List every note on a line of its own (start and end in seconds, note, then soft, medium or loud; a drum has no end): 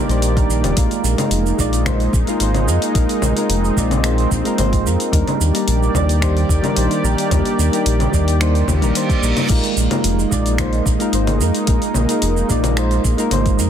0.00 0.73 D#3 medium
0.00 2.91 A#3 medium
0.00 0.73 G4 medium
0.00 0.73 D5 medium
0.08 0.45 A#1 medium
0.08 0.33 G3 medium
0.08 0.33 A#3 medium
0.08 0.33 D4 medium
0.08 0.34 D#4 medium
0.08 0.34 C5 medium
0.08 open hi-hat soft
0.08 shaker soft
0.22 open hi-hat medium
0.22 shaker soft
0.35 0.73 G3 medium
0.35 0.73 A#3 medium
0.35 0.74 D4 medium
0.35 0.74 D#4 medium
0.35 0.74 A#4 medium
0.35 kick loud
0.35 open hi-hat soft
0.35 shaker soft
0.49 0.65 A#1 medium
0.49 shaker medium
0.63 0.74 D#1 medium
0.63 open hi-hat soft
0.63 low conga medium
0.63 shaker soft
0.76 0.88 A#1 loud
0.76 1.14 G#3 medium
0.76 5.09 G#3 medium
0.76 1.15 A#3 medium
0.76 5.09 D#4 medium
0.76 1.15 D#4 medium
0.76 1.16 F4 medium
0.76 1.16 A#4 loud
0.76 kick loud
0.76 open hi-hat medium
0.76 shaker soft
0.91 open hi-hat soft
0.91 shaker soft
1.04 1.15 A#1 medium
1.04 shaker medium
1.18 1.55 G#3 medium
1.18 1.56 A#3 medium
1.18 1.56 D#4 medium
1.18 1.56 F4 medium
1.18 1.57 A#4 medium
1.18 open hi-hat soft
1.18 low conga medium
1.18 shaker soft
1.31 1.53 F1 medium
1.31 open hi-hat medium
1.31 shaker soft
1.46 shaker soft
1.58 2.09 A#1 medium
1.58 1.81 G#3 medium
1.58 1.81 A#3 medium
1.58 1.81 D#4 medium
1.58 1.82 F4 medium
1.58 1.82 D5 loud
1.58 kick medium
1.58 shaker medium
1.73 open hi-hat soft
1.73 shaker soft
1.85 2.10 G#3 medium
1.85 2.10 A#3 medium
1.85 2.11 D#4 medium
1.85 2.11 F4 medium
1.85 2.11 C5 loud
1.85 finger snap medium
1.85 kick loud
1.85 open hi-hat medium
1.85 low conga medium
1.85 shaker soft
2.00 open hi-hat soft
2.00 shaker soft
2.13 2.24 A#1 medium
2.13 kick loud
2.13 shaker medium
2.27 2.37 G#3 medium
2.27 2.37 A#3 medium
2.27 2.38 D#4 medium
2.27 2.38 F4 medium
2.27 2.38 A#4 loud
2.27 open hi-hat soft
2.27 shaker soft
2.40 2.69 G#1 medium
2.40 2.64 G#3 medium
2.40 2.65 A#3 medium
2.40 2.65 D#4 medium
2.40 2.65 F4 medium
2.40 2.66 C5 loud
2.40 open hi-hat medium
2.40 shaker soft
2.55 open hi-hat soft
2.55 low conga medium
2.55 shaker soft
2.67 2.79 F2 medium
2.67 2.91 G#3 medium
2.67 2.92 A#3 medium
2.67 2.92 D#4 medium
2.67 2.92 F4 medium
2.67 2.93 A#4 medium
2.67 shaker medium
2.82 open hi-hat soft
2.82 shaker soft
2.94 3.06 A#1 loud
2.94 3.33 G#3 medium
2.94 3.33 A#3 medium
2.94 5.11 C4 medium
2.94 3.33 D#4 medium
2.94 3.34 F4 medium
2.94 3.34 A#4 loud
2.94 kick loud
2.94 open hi-hat medium
2.94 shaker soft
3.09 open hi-hat soft
3.09 shaker soft
3.22 3.33 A#1 medium
3.22 low conga medium
3.22 shaker medium
3.35 3.73 G#3 medium
3.35 3.74 A#3 medium
3.35 3.74 D#4 medium
3.35 3.74 F4 medium
3.35 3.75 A#4 medium
3.35 open hi-hat soft
3.35 shaker soft
3.49 3.71 F1 medium
3.49 open hi-hat medium
3.49 shaker soft
3.65 shaker soft
3.76 4.27 A#1 medium
3.76 3.99 G#3 medium
3.76 3.99 A#3 medium
3.76 3.99 D#4 medium
3.76 4.00 F4 medium
3.76 4.00 D5 medium
3.76 kick medium
3.76 shaker medium
3.91 open hi-hat soft
3.91 low conga medium
3.91 shaker soft
4.03 4.28 G#3 medium
4.03 4.28 A#3 medium
4.03 4.28 D#4 medium
4.03 4.29 F4 medium
4.03 4.29 C5 loud
4.03 finger snap medium
4.03 open hi-hat medium
4.03 shaker soft
4.18 open hi-hat soft
4.18 shaker soft
4.31 4.42 A#1 medium
4.31 kick medium
4.31 shaker medium
4.44 4.55 G#3 medium
4.44 4.55 A#3 medium
4.44 4.56 D#4 medium
4.44 4.56 F4 medium
4.44 4.56 A#4 loud
4.44 open hi-hat soft
4.44 shaker soft
4.57 4.87 G#1 medium
4.57 4.82 G#3 loud
4.57 4.83 A#3 medium
4.57 4.83 D#4 medium
4.57 4.83 F4 medium
4.57 4.83 C5 loud
4.57 open hi-hat medium
4.57 low conga medium
4.57 shaker soft
4.73 kick loud
4.73 open hi-hat soft
4.73 shaker soft
4.85 4.97 F2 medium
4.85 5.09 G#3 medium
4.85 5.10 A#3 medium
4.85 5.10 D#4 medium
4.85 5.10 F4 medium
4.85 5.11 A#4 medium
4.85 shaker medium
5.00 open hi-hat soft
5.00 shaker soft
5.12 5.24 D#2 loud
5.12 9.46 D#3 medium
5.12 5.51 G3 medium
5.12 5.51 A#3 medium
5.12 13.70 A#3 medium
5.12 5.51 D4 medium
5.12 5.52 D#4 medium
5.12 9.46 G4 medium
5.12 5.52 A#4 loud
5.12 9.46 D5 medium
5.12 kick loud
5.12 open hi-hat medium
5.12 shaker soft
5.28 open hi-hat soft
5.28 low conga medium
5.28 shaker soft
5.41 5.52 D#2 medium
5.41 shaker medium
5.53 5.91 G3 medium
5.53 5.92 A#3 medium
5.53 5.92 D4 medium
5.53 5.92 D#4 medium
5.53 5.93 A#4 medium
5.53 open hi-hat soft
5.53 shaker soft
5.68 5.89 A#1 medium
5.68 open hi-hat medium
5.68 shaker soft
5.83 shaker soft
5.94 6.45 D#2 medium
5.94 6.17 G3 medium
5.94 6.17 A#3 medium
5.94 6.17 D4 medium
5.94 6.18 D#4 medium
5.94 6.18 D5 loud
5.94 kick medium
5.94 low conga medium
5.94 shaker medium
6.09 open hi-hat soft
6.09 shaker soft
6.20 6.45 G3 loud
6.20 6.46 A#3 medium
6.20 6.46 D4 medium
6.20 6.47 D#4 medium
6.20 6.47 C5 loud
6.20 finger snap medium
6.20 kick medium
6.20 open hi-hat medium
6.20 shaker soft
6.37 open hi-hat soft
6.37 shaker soft
6.49 6.61 D#2 loud
6.49 kick loud
6.49 shaker medium
6.62 6.73 G3 loud
6.62 6.73 A#3 medium
6.62 6.74 D4 medium
6.62 6.74 D#4 medium
6.62 6.74 A#4 loud
6.62 open hi-hat soft
6.62 low conga medium
6.62 shaker soft
6.75 6.88 A#1 medium
6.75 7.00 G3 medium
6.75 7.00 A#3 medium
6.75 7.01 D4 medium
6.75 7.01 D#4 medium
6.75 7.01 C5 loud
6.75 open hi-hat medium
6.75 shaker soft
6.91 open hi-hat soft
6.91 shaker soft
7.02 7.15 A#1 medium
7.02 7.27 G3 medium
7.02 7.28 A#3 medium
7.02 7.28 D4 medium
7.02 7.28 D#4 medium
7.02 7.29 A#4 medium
7.02 shaker medium
7.18 open hi-hat soft
7.18 shaker soft
7.30 7.42 D#2 loud
7.30 7.69 G3 medium
7.30 7.69 A#3 medium
7.30 7.69 D4 medium
7.30 7.70 D#4 medium
7.30 7.70 A#4 loud
7.30 kick loud
7.30 open hi-hat medium
7.30 low conga medium
7.30 shaker soft
7.45 open hi-hat soft
7.45 shaker soft
7.59 7.70 D#2 medium
7.59 shaker medium
7.71 8.09 G3 medium
7.71 8.10 A#3 medium
7.71 8.10 D4 medium
7.71 8.10 D#4 medium
7.71 8.11 A#4 medium
7.71 open hi-hat soft
7.71 shaker soft
7.86 8.07 A#1 medium
7.86 open hi-hat medium
7.86 shaker soft
8.00 open hi-hat soft
8.00 low conga medium
8.00 shaker soft
8.12 8.63 D#2 medium
8.12 8.35 G3 medium
8.12 8.35 A#3 medium
8.12 8.36 D4 medium
8.12 8.36 D#4 medium
8.12 8.36 D5 loud
8.12 kick medium
8.12 shaker medium
8.28 open hi-hat soft
8.28 shaker soft
8.40 8.64 G3 medium
8.40 8.64 A#3 medium
8.40 8.65 D4 medium
8.40 8.65 D#4 medium
8.40 8.65 C5 medium
8.40 finger snap medium
8.40 open hi-hat medium
8.40 reverse cymbal medium
8.40 shaker soft
8.55 open hi-hat soft
8.55 shaker soft
8.68 8.84 D#2 medium
8.68 kick medium
8.68 low conga medium
8.68 shaker medium
8.81 8.92 A#1 medium
8.81 8.91 G3 loud
8.81 8.92 A#3 medium
8.81 8.92 D4 medium
8.81 8.92 D#4 medium
8.81 8.93 A#4 loud
8.81 open hi-hat soft
8.81 shaker soft
8.94 9.19 G3 medium
8.94 9.19 A#3 medium
8.94 9.20 D4 medium
8.94 9.20 D#4 medium
8.94 9.20 C5 medium
8.94 open hi-hat medium
8.94 shaker soft
9.09 kick loud
9.09 open hi-hat soft
9.09 shaker soft
9.22 9.33 A#1 medium
9.22 9.46 G3 medium
9.22 9.46 A#3 medium
9.22 9.47 D4 medium
9.22 9.47 D#4 medium
9.22 9.48 A#4 medium
9.22 shaker medium
9.37 open hi-hat soft
9.37 low conga medium
9.37 shaker soft
9.49 9.61 A#1 loud
9.49 9.87 G#3 medium
9.49 13.70 G#3 medium
9.49 9.88 A#3 medium
9.49 13.70 D#4 medium
9.49 9.88 D#4 medium
9.49 9.88 F4 medium
9.49 9.89 A#4 loud
9.49 kick loud
9.49 open hi-hat medium
9.49 crash medium
9.49 shaker soft
9.64 open hi-hat soft
9.64 shaker soft
9.77 9.88 A#1 medium
9.77 shaker medium
9.90 10.28 G#3 medium
9.90 10.28 A#3 medium
9.90 10.29 D#4 medium
9.90 10.29 F4 medium
9.90 10.29 A#4 medium
9.90 open hi-hat soft
9.90 low conga medium
9.90 shaker soft
10.04 10.26 F1 medium
10.04 open hi-hat medium
10.04 shaker soft
10.19 shaker soft
10.30 10.81 A#1 medium
10.30 10.53 G#3 medium
10.30 10.54 A#3 medium
10.30 10.54 D#4 medium
10.30 10.54 F4 medium
10.30 10.55 D5 loud
10.30 kick medium
10.30 shaker medium
10.46 open hi-hat soft
10.46 shaker soft
10.58 10.82 G#3 medium
10.58 10.83 A#3 medium
10.58 10.83 D#4 medium
10.58 10.83 F4 medium
10.58 10.84 C5 loud
10.58 finger snap medium
10.58 kick loud
10.58 open hi-hat medium
10.58 low conga medium
10.58 shaker soft
10.73 open hi-hat soft
10.73 shaker soft
10.86 10.97 A#1 loud
10.86 kick loud
10.86 shaker medium
10.99 11.10 G#3 loud
10.99 11.10 A#3 medium
10.99 11.10 D#4 medium
10.99 11.11 F4 medium
10.99 11.11 A#4 loud
10.99 open hi-hat soft
10.99 shaker soft
11.12 11.42 G#1 medium
11.12 11.37 G#3 medium
11.12 11.37 A#3 medium
11.12 11.37 D#4 medium
11.12 11.38 F4 medium
11.12 11.38 C5 medium
11.12 open hi-hat medium
11.12 shaker soft
11.27 open hi-hat soft
11.27 low conga medium
11.27 shaker soft
11.40 11.51 F2 medium
11.40 11.64 G#3 medium
11.40 11.65 A#3 medium
11.40 11.65 D#4 medium
11.40 11.65 F4 medium
11.40 11.66 A#4 medium
11.40 shaker medium
11.55 open hi-hat soft
11.55 shaker soft
11.66 11.79 A#1 loud
11.66 12.05 G#3 loud
11.66 12.06 A#3 medium
11.66 12.06 D#4 medium
11.66 12.06 F4 medium
11.66 12.07 A#4 loud
11.66 kick loud
11.66 open hi-hat medium
11.66 shaker soft
11.82 open hi-hat soft
11.82 shaker soft
11.94 12.06 A#1 medium
11.94 low conga medium
11.94 shaker medium
12.08 12.46 G#3 medium
12.08 12.46 A#3 medium
12.08 12.47 D#4 medium
12.08 12.47 F4 medium
12.08 12.47 A#4 medium
12.08 open hi-hat soft
12.08 shaker soft
12.22 12.44 F1 medium
12.22 open hi-hat medium
12.22 shaker soft
12.37 shaker soft
12.48 13.00 A#1 medium
12.48 12.71 G#3 medium
12.48 12.72 A#3 medium
12.48 12.72 D#4 medium
12.48 12.72 F4 medium
12.48 12.73 D5 medium
12.48 kick medium
12.48 shaker medium
12.64 open hi-hat soft
12.64 low conga medium
12.64 shaker soft
12.76 13.01 G#3 medium
12.76 13.01 A#3 medium
12.76 13.01 D#4 medium
12.76 13.02 F4 medium
12.76 13.02 C5 loud
12.76 finger snap medium
12.76 open hi-hat medium
12.76 shaker soft
12.91 open hi-hat soft
12.91 shaker soft
13.04 13.15 A#1 loud
13.04 kick medium
13.04 shaker medium
13.17 13.28 G#3 loud
13.17 13.28 A#3 medium
13.17 13.28 D#4 medium
13.17 13.29 F4 medium
13.17 13.29 A#4 loud
13.17 open hi-hat soft
13.17 shaker soft
13.30 13.60 G#1 medium
13.30 13.55 G#3 medium
13.30 13.55 A#3 medium
13.30 13.56 D#4 medium
13.30 13.56 F4 medium
13.30 13.56 C5 loud
13.30 open hi-hat medium
13.30 low conga medium
13.30 shaker soft
13.46 kick loud
13.46 open hi-hat soft
13.46 shaker soft
13.57 13.70 F2 medium
13.57 13.70 G#3 medium
13.57 13.70 A#3 medium
13.57 13.70 D#4 medium
13.57 13.70 F4 medium
13.57 13.70 A#4 medium
13.57 shaker medium